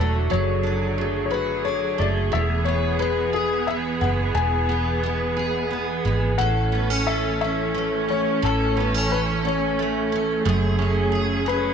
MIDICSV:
0, 0, Header, 1, 5, 480
1, 0, Start_track
1, 0, Key_signature, 3, "major"
1, 0, Tempo, 675676
1, 220, Time_signature, 6, 3, 24, 8
1, 8338, End_track
2, 0, Start_track
2, 0, Title_t, "Grand piano"
2, 0, Program_c, 0, 0
2, 0, Note_on_c, 0, 69, 57
2, 222, Note_on_c, 0, 73, 74
2, 226, Note_off_c, 0, 69, 0
2, 880, Note_off_c, 0, 73, 0
2, 891, Note_on_c, 0, 73, 51
2, 933, Note_on_c, 0, 71, 73
2, 938, Note_off_c, 0, 73, 0
2, 1156, Note_off_c, 0, 71, 0
2, 1170, Note_on_c, 0, 73, 72
2, 1412, Note_on_c, 0, 74, 69
2, 1418, Note_off_c, 0, 73, 0
2, 1466, Note_off_c, 0, 74, 0
2, 1655, Note_on_c, 0, 76, 83
2, 1875, Note_off_c, 0, 76, 0
2, 1882, Note_on_c, 0, 73, 72
2, 2130, Note_on_c, 0, 71, 72
2, 2132, Note_off_c, 0, 73, 0
2, 2351, Note_off_c, 0, 71, 0
2, 2375, Note_on_c, 0, 68, 69
2, 2609, Note_on_c, 0, 76, 76
2, 2618, Note_off_c, 0, 68, 0
2, 2663, Note_off_c, 0, 76, 0
2, 2851, Note_on_c, 0, 78, 77
2, 2905, Note_off_c, 0, 78, 0
2, 3090, Note_on_c, 0, 80, 77
2, 3786, Note_off_c, 0, 80, 0
2, 4531, Note_on_c, 0, 78, 84
2, 4992, Note_off_c, 0, 78, 0
2, 5021, Note_on_c, 0, 76, 78
2, 5247, Note_off_c, 0, 76, 0
2, 5265, Note_on_c, 0, 76, 77
2, 5756, Note_on_c, 0, 73, 69
2, 5761, Note_off_c, 0, 76, 0
2, 5999, Note_off_c, 0, 73, 0
2, 6001, Note_on_c, 0, 69, 72
2, 6477, Note_on_c, 0, 71, 74
2, 6489, Note_off_c, 0, 69, 0
2, 6530, Note_off_c, 0, 71, 0
2, 6726, Note_on_c, 0, 73, 67
2, 7226, Note_off_c, 0, 73, 0
2, 8154, Note_on_c, 0, 71, 75
2, 8338, Note_off_c, 0, 71, 0
2, 8338, End_track
3, 0, Start_track
3, 0, Title_t, "Steel-string acoustic guitar"
3, 0, Program_c, 1, 25
3, 0, Note_on_c, 1, 54, 57
3, 0, Note_on_c, 1, 57, 45
3, 0, Note_on_c, 1, 62, 43
3, 0, Note_on_c, 1, 66, 42
3, 203, Note_off_c, 1, 54, 0
3, 212, Note_on_c, 1, 54, 58
3, 441, Note_off_c, 1, 62, 0
3, 449, Note_on_c, 1, 62, 47
3, 686, Note_off_c, 1, 57, 0
3, 695, Note_on_c, 1, 57, 46
3, 919, Note_off_c, 1, 66, 0
3, 927, Note_on_c, 1, 66, 50
3, 1162, Note_off_c, 1, 62, 0
3, 1171, Note_on_c, 1, 62, 43
3, 1399, Note_off_c, 1, 57, 0
3, 1408, Note_on_c, 1, 57, 50
3, 1646, Note_on_c, 1, 40, 64
3, 1648, Note_off_c, 1, 54, 0
3, 1695, Note_off_c, 1, 66, 0
3, 1697, Note_off_c, 1, 57, 0
3, 1698, Note_off_c, 1, 62, 0
3, 1886, Note_on_c, 1, 59, 52
3, 2125, Note_on_c, 1, 56, 49
3, 2365, Note_on_c, 1, 68, 54
3, 2602, Note_off_c, 1, 59, 0
3, 2611, Note_on_c, 1, 59, 46
3, 2841, Note_off_c, 1, 56, 0
3, 2849, Note_on_c, 1, 56, 47
3, 3079, Note_off_c, 1, 40, 0
3, 3088, Note_on_c, 1, 40, 63
3, 3323, Note_off_c, 1, 59, 0
3, 3331, Note_on_c, 1, 59, 51
3, 3568, Note_off_c, 1, 56, 0
3, 3576, Note_on_c, 1, 56, 45
3, 3804, Note_off_c, 1, 68, 0
3, 3812, Note_on_c, 1, 68, 51
3, 4044, Note_off_c, 1, 59, 0
3, 4053, Note_on_c, 1, 59, 41
3, 4288, Note_off_c, 1, 56, 0
3, 4296, Note_on_c, 1, 56, 43
3, 4535, Note_on_c, 1, 45, 64
3, 4537, Note_off_c, 1, 68, 0
3, 4540, Note_on_c, 1, 69, 47
3, 4541, Note_off_c, 1, 40, 0
3, 4588, Note_off_c, 1, 59, 0
3, 4589, Note_off_c, 1, 56, 0
3, 4774, Note_on_c, 1, 59, 51
3, 4902, Note_off_c, 1, 59, 0
3, 4902, Note_on_c, 1, 61, 42
3, 5023, Note_off_c, 1, 69, 0
3, 5026, Note_on_c, 1, 69, 54
3, 5257, Note_off_c, 1, 61, 0
3, 5265, Note_on_c, 1, 61, 51
3, 5502, Note_on_c, 1, 57, 44
3, 5740, Note_off_c, 1, 61, 0
3, 5743, Note_on_c, 1, 61, 48
3, 5976, Note_off_c, 1, 45, 0
3, 5984, Note_on_c, 1, 45, 64
3, 5985, Note_off_c, 1, 69, 0
3, 5987, Note_on_c, 1, 69, 53
3, 6226, Note_off_c, 1, 61, 0
3, 6229, Note_on_c, 1, 59, 52
3, 6353, Note_off_c, 1, 59, 0
3, 6353, Note_on_c, 1, 61, 45
3, 6463, Note_off_c, 1, 69, 0
3, 6466, Note_on_c, 1, 69, 55
3, 6704, Note_off_c, 1, 61, 0
3, 6713, Note_on_c, 1, 61, 51
3, 6952, Note_off_c, 1, 57, 0
3, 6955, Note_on_c, 1, 57, 49
3, 7187, Note_off_c, 1, 61, 0
3, 7190, Note_on_c, 1, 61, 53
3, 7423, Note_off_c, 1, 45, 0
3, 7426, Note_on_c, 1, 42, 69
3, 7428, Note_off_c, 1, 69, 0
3, 7431, Note_on_c, 1, 68, 57
3, 7660, Note_off_c, 1, 61, 0
3, 7662, Note_on_c, 1, 61, 55
3, 7890, Note_off_c, 1, 68, 0
3, 7899, Note_on_c, 1, 68, 56
3, 7920, Note_off_c, 1, 57, 0
3, 8133, Note_off_c, 1, 61, 0
3, 8141, Note_on_c, 1, 61, 53
3, 8338, Note_off_c, 1, 42, 0
3, 8338, Note_off_c, 1, 61, 0
3, 8338, Note_off_c, 1, 68, 0
3, 8338, End_track
4, 0, Start_track
4, 0, Title_t, "String section"
4, 0, Program_c, 2, 48
4, 0, Note_on_c, 2, 50, 56
4, 0, Note_on_c, 2, 54, 48
4, 0, Note_on_c, 2, 57, 56
4, 193, Note_off_c, 2, 57, 0
4, 220, Note_on_c, 2, 68, 61
4, 1626, Note_off_c, 2, 54, 0
4, 1628, Note_off_c, 2, 50, 0
4, 1656, Note_on_c, 2, 59, 65
4, 1657, Note_on_c, 2, 52, 58
4, 4514, Note_off_c, 2, 68, 0
4, 4515, Note_off_c, 2, 59, 0
4, 4516, Note_off_c, 2, 52, 0
4, 4541, Note_on_c, 2, 61, 66
4, 4543, Note_on_c, 2, 52, 61
4, 4543, Note_on_c, 2, 57, 54
4, 7396, Note_off_c, 2, 61, 0
4, 7397, Note_off_c, 2, 52, 0
4, 7432, Note_on_c, 2, 54, 65
4, 7433, Note_on_c, 2, 68, 57
4, 8338, Note_off_c, 2, 54, 0
4, 8338, Note_off_c, 2, 57, 0
4, 8338, Note_off_c, 2, 68, 0
4, 8338, End_track
5, 0, Start_track
5, 0, Title_t, "Fingered electric bass"
5, 0, Program_c, 3, 33
5, 0, Note_on_c, 3, 28, 62
5, 209, Note_off_c, 3, 28, 0
5, 229, Note_on_c, 3, 30, 69
5, 1389, Note_off_c, 3, 30, 0
5, 1417, Note_on_c, 3, 30, 65
5, 1639, Note_off_c, 3, 30, 0
5, 1660, Note_on_c, 3, 28, 73
5, 2823, Note_off_c, 3, 28, 0
5, 2851, Note_on_c, 3, 30, 63
5, 3076, Note_off_c, 3, 30, 0
5, 3088, Note_on_c, 3, 28, 76
5, 4270, Note_off_c, 3, 28, 0
5, 4298, Note_on_c, 3, 32, 56
5, 4527, Note_off_c, 3, 32, 0
5, 4536, Note_on_c, 3, 33, 77
5, 5957, Note_off_c, 3, 33, 0
5, 5990, Note_on_c, 3, 33, 77
5, 7397, Note_off_c, 3, 33, 0
5, 7427, Note_on_c, 3, 30, 81
5, 8338, Note_off_c, 3, 30, 0
5, 8338, End_track
0, 0, End_of_file